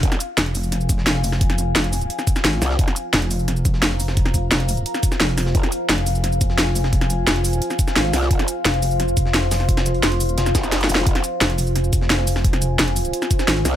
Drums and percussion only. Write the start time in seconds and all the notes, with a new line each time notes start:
0.03 kick, closed hi-hat
0.12 snare, closed hi-hat
0.20 closed hi-hat, shaker
0.38 snare, closed hi-hat
0.46 closed hi-hat
0.55 closed hi-hat, open hi-hat, shaker
0.63 shaker
0.72 snare, closed hi-hat
0.81 shaker
0.89 kick, closed hi-hat, shaker
0.98 snare
1.07 snare, closed hi-hat
1.24 closed hi-hat, open hi-hat, shaker
1.32 snare
1.41 kick, closed hi-hat
1.50 snare, closed hi-hat
1.58 closed hi-hat, shaker
1.76 snare, closed hi-hat
1.84 closed hi-hat
1.93 closed hi-hat, open hi-hat, shaker
2.01 closed hi-hat, shaker
2.10 closed hi-hat
2.19 snare, shaker
2.27 kick, closed hi-hat, shaker
2.36 snare, shaker
2.44 snare, closed hi-hat
2.53 closed hi-hat
2.62 snare, closed hi-hat, open hi-hat, shaker
2.70 snare
2.79 kick, closed hi-hat
2.88 snare, closed hi-hat
2.96 closed hi-hat, shaker
3.13 snare, closed hi-hat
3.22 closed hi-hat
3.31 closed hi-hat, open hi-hat, shaker
3.39 shaker
3.48 snare, closed hi-hat
3.57 shaker
3.65 kick, closed hi-hat, shaker
3.74 snare
3.82 snare, closed hi-hat
4.00 closed hi-hat, open hi-hat, shaker
4.08 snare
4.17 kick, closed hi-hat
4.26 snare, closed hi-hat
4.34 kick, closed hi-hat, shaker
4.51 snare, closed hi-hat
4.60 closed hi-hat
4.69 closed hi-hat, open hi-hat, shaker
4.77 closed hi-hat, shaker
4.86 closed hi-hat
4.94 snare, shaker
5.03 kick, closed hi-hat, shaker
5.12 snare, shaker
5.20 snare, closed hi-hat
5.29 closed hi-hat
5.38 snare, closed hi-hat, open hi-hat, shaker
5.46 snare
5.55 kick, closed hi-hat
5.63 snare, closed hi-hat
5.72 closed hi-hat, shaker
5.89 snare, closed hi-hat
5.98 closed hi-hat
6.07 closed hi-hat, open hi-hat, shaker
6.15 shaker
6.24 snare, closed hi-hat
6.32 shaker
6.41 kick, closed hi-hat, shaker
6.50 snare
6.58 snare, closed hi-hat
6.75 closed hi-hat, open hi-hat, shaker
6.84 snare
6.93 kick, closed hi-hat
7.01 snare, closed hi-hat
7.10 closed hi-hat, shaker
7.27 snare, closed hi-hat
7.36 closed hi-hat
7.45 closed hi-hat, open hi-hat, shaker
7.53 closed hi-hat, shaker
7.62 closed hi-hat
7.70 snare, shaker
7.79 kick, closed hi-hat, shaker
7.88 snare, shaker
7.96 snare, closed hi-hat
8.05 closed hi-hat
8.13 snare, closed hi-hat, open hi-hat, shaker
8.22 snare
8.31 kick, closed hi-hat
8.39 snare, closed hi-hat
8.48 closed hi-hat, shaker
8.65 snare, closed hi-hat
8.74 closed hi-hat
8.82 closed hi-hat, open hi-hat, shaker
8.91 shaker
9.00 snare, closed hi-hat
9.08 shaker
9.17 kick, closed hi-hat, shaker
9.26 snare
9.34 snare, closed hi-hat
9.51 snare, closed hi-hat, open hi-hat, shaker
9.60 snare, closed hi-hat
9.69 kick, closed hi-hat
9.77 snare, closed hi-hat
9.86 closed hi-hat, shaker
9.95 closed hi-hat
10.03 snare, closed hi-hat
10.12 closed hi-hat
10.20 open hi-hat, shaker
10.29 closed hi-hat, shaker
10.38 snare, closed hi-hat
10.46 snare, shaker
10.55 kick, snare, closed hi-hat, shaker
10.64 snare, shaker
10.72 snare, closed hi-hat
10.81 snare, closed hi-hat
10.89 closed hi-hat, open hi-hat, shaker
10.95 snare
10.98 snare
11.07 kick, closed hi-hat
11.15 snare, closed hi-hat
11.24 closed hi-hat, shaker
11.41 snare, closed hi-hat
11.50 closed hi-hat
11.58 closed hi-hat, open hi-hat, shaker
11.67 shaker
11.76 snare, closed hi-hat
11.84 shaker
11.93 kick, closed hi-hat, shaker
12.01 snare
12.10 snare, closed hi-hat
12.27 closed hi-hat, open hi-hat, shaker
12.36 snare
12.45 kick, closed hi-hat
12.53 snare, closed hi-hat
12.62 closed hi-hat, shaker
12.79 snare, closed hi-hat
12.88 closed hi-hat
12.96 closed hi-hat, open hi-hat, shaker
13.05 closed hi-hat, shaker
13.13 closed hi-hat
13.22 snare, shaker
13.31 kick, closed hi-hat, shaker
13.39 snare, shaker
13.48 snare, closed hi-hat
13.57 closed hi-hat
13.65 snare, closed hi-hat, open hi-hat, shaker